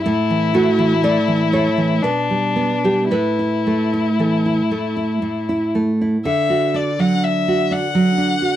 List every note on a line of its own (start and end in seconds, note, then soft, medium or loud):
0.06 1.99 A2 medium
0.06 0.51 E4 medium
0.06 2.04 E4 medium
0.30 0.68 E3 soft
0.54 0.92 A3 soft
0.54 1.00 F#4 medium
0.79 1.17 E3 soft
1.03 1.42 A3 soft
1.03 1.50 D5 medium
1.28 1.67 E3 soft
1.53 1.93 A3 soft
1.53 2.01 C#5 medium
1.78 2.03 E3 soft
2.03 3.08 B2 soft
2.03 3.10 D4 medium
2.03 2.80 B4 medium
2.30 2.73 G3 soft
2.56 3.00 B3 soft
2.84 3.11 G3 soft
2.84 3.11 G4 medium
3.10 5.18 A2 soft
3.10 5.71 E4 soft
3.10 4.14 B4 medium
3.39 3.82 E4 soft
3.67 4.08 A3 soft
3.94 4.35 E4 soft
4.19 4.60 E3 soft
4.19 5.19 A4 soft
4.46 4.87 E4 soft
4.71 5.12 A3 soft
4.97 5.22 E4 soft
5.22 6.23 A2 soft
5.49 5.91 E4 soft
5.75 6.16 A3 soft
6.01 6.26 E4 soft
6.25 8.56 D3 medium
6.25 6.77 E5 medium
6.50 6.89 F#4 soft
6.74 7.14 D4 soft
6.74 7.01 D5 medium
6.99 7.77 F#3 soft
6.99 7.25 F#5 medium
7.24 7.74 E5 medium
7.48 7.87 F#4 soft
7.71 8.10 D4 soft
7.71 8.56 F#5 medium
7.95 8.33 F#3 soft
8.18 8.56 D4 soft
8.42 8.56 F#4 soft